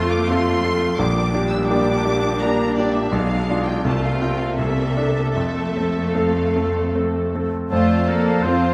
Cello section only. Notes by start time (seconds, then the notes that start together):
Already playing: F2
1.00 A#2
3.14 B2
3.85 C3
5.36 F2
7.72 A3
8.10 A#3
8.45 C4